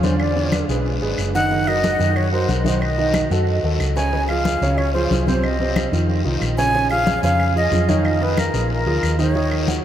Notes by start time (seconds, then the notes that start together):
Already playing: E2
0.03 D3 D4 C5 D5, high conga, short guiro
0.19 D5, high conga, long guiro, claves
0.36 D3 D4 D5, high conga
0.52 high conga, short guiro, claves
0.69 B1 G#3 G#4 B4, high conga, short guiro
0.86 high conga, long guiro
1.01 G#1 G#3 G#4 B4, high conga
1.18 F#1, high conga, short guiro, claves
1.35 D#3 D#4 D#5 F#5, high conga, short guiro
1.51 D#3 D#4 D#5, high conga, long guiro
1.67 F#3 F#4 A#4 D#5, high conga, claves
1.84 high conga, short guiro
1.99 F#2 D#3 D#4 D#5, high conga, short guiro
2.16 C#5, high conga, long guiro, claves
2.32 F#3 F#4 A#4 C5, high conga
2.49 B1 F#3 F#4 A#4, high conga, short guiro
2.65 D#3 D#4 C5 D#5, high conga, short guiro
2.81 D#5, high conga, long guiro, claves
2.98 D#3 D#4 D#5, high conga
3.14 high conga, short guiro, claves
3.30 F#2 F#3 F#4 A4, high conga, short guiro
3.47 high conga, long guiro
3.63 D#2 F#3 F#4 A4, high conga
3.79 C#2, high conga, short guiro, claves
3.96 C#3 C#4 C#5 G#5, high conga, short guiro
4.13 C#3 C#4 C#5, high conga, long guiro
4.28 F3 F4 G#4 F5, high conga, claves
4.45 high conga, short guiro
4.62 C#2 C#3 C#4 C#5, high conga, short guiro
4.78 C#5, high conga, long guiro, claves
4.93 F3 F4 G#4 C5, high conga
5.11 C2 F3 F4 G#4, high conga, short guiro
5.27 C3 C4 C5, high conga, short guiro
5.43 D#5, high conga, long guiro, claves
5.60 C3 C4 C5, high conga
5.76 high conga, short guiro, claves
5.92 F2 D#3 D#4 F4, high conga, short guiro
6.09 high conga, long guiro
6.25 C2 D#3 D#4 F4, high conga
6.41 A#1, high conga, short guiro, claves
6.57 C#3 C#4 C#5 G#5, high conga, short guiro
6.74 C#3 C#4 C#5, high conga, long guiro
6.91 F3 F4 G#4 F5, high conga, claves
7.07 high conga, short guiro
7.23 F2 C#3 C#4 C#5 F5, high conga, short guiro
7.39 high conga, long guiro, claves
7.56 F3 F4 G#4 D#5, high conga
7.71 F2 F3 F4 G#4, high conga, short guiro
7.89 D#3 D#4 C#5 D#5, high conga, short guiro
8.05 D#5, high conga, long guiro, claves
8.21 D#3 D#4 B4 D#5, high conga
8.37 A#4, high conga, short guiro, claves
8.54 A#1 F3 F4 G#4, high conga, short guiro
8.70 A#4, high conga, long guiro
8.86 D2 F3 F4 G#4, high conga
9.03 D#2, high conga, short guiro, claves
9.19 D#3 D#4 C#5 D#5, high conga, short guiro
9.35 D#3 D#4 D#5, high conga, long guiro
9.52 high conga, claves
9.67 F#3 F#4 F#5, high conga, short guiro